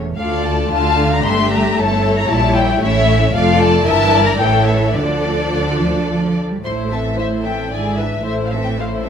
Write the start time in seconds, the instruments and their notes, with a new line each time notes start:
Already playing: double bass section E1, cello section E2
0.17 double bass section D2, cello section D2, viola section A3 F4, violin section A4 D5 F5
0.44 violin section A5
0.71 double bass section D2, cello section D3, viola section D4, violin section F4 F5 A5
1.13 violin section A#5
1.25 double bass section G1, cello section G2, violin section G4 E5 C6
1.53 violin section A#5
1.78 double bass section G1, cello section G2, viola section E4, violin section A4 C#5 A5
2.18 violin section A#5
2.29 double bass section A#1, cello section A#2, viola section G3 E4, violin section E4 A5
2.58 violin section G5
2.82 double bass section A1, cello section A2, viola section A3 C#4, violin section E4 C#5 E5
3.34 double bass section F1, cello section F2, viola section A3 F4, violin section A4 D5 F5
3.62 violin section A5
3.87 double bass section G1, cello section G2, viola section E3 E4, violin section A#4 E5 A5
4.14 violin section D5
4.28 violin section A#5
4.40 double bass section A1, cello section A2, viola section E3 E4, violin section A4 C#5 G5
4.66 violin section E5
4.95 double bass section D2, cello section D3, viola section F3 D4, violin section A4 D5
5.53 cello section D3
5.80 cello section F3
6.09 cello section F3
6.51 cello section G3
6.64 double bass section A1, cello section A2, viola section A3 E4, violin section C5 C6
6.92 viola section E3 C4, violin section A4 E5 A5
7.18 viola section A3 E4, violin section C5 E5
7.45 viola section E3 C4, violin section A4 E5 G5
7.71 double bass section G#1, cello section G#2, viola section D3 E4, violin section G#4 D5 G#5
7.98 viola section E3 D4, violin section B4 E5
8.24 double bass section A1, cello section A2, viola section A3 E4, violin section C5 E5
8.46 violin section F5
8.52 viola section E3 C4, violin section A4 E5
8.64 violin section G5
8.78 viola section A3 E4, violin section C5 F5
9.04 viola section E3 C4, violin section A4 E5